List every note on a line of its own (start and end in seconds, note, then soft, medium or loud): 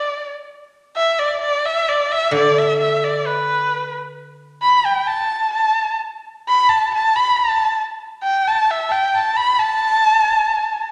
0.00 0.31 D5 medium
0.96 1.20 E5 medium
1.18 1.40 D5 medium
1.41 1.67 D5 medium
1.65 1.90 E5 medium
1.88 2.13 D5 medium
2.12 2.33 E5 medium
2.31 5.09 D3 medium
2.31 2.59 D5 medium
2.58 2.79 E5 medium
2.80 3.05 E5 medium
3.04 3.28 D5 medium
3.26 3.95 B4 medium
4.63 4.87 B5 medium
4.85 5.08 G5 medium
5.07 5.52 A5 medium
5.53 5.96 A5 medium
6.48 6.71 B5 medium
6.69 6.91 A5 medium
6.94 7.17 A5 medium
7.16 7.37 B5 medium
7.36 7.81 A5 medium
8.23 8.49 G5 medium
8.47 8.72 A5 medium
8.71 8.90 E5 medium
8.89 9.14 G5 medium
8.89 8.93 A5 medium
9.15 9.38 A5 medium
9.37 9.61 B5 medium
9.59 10.91 A5 medium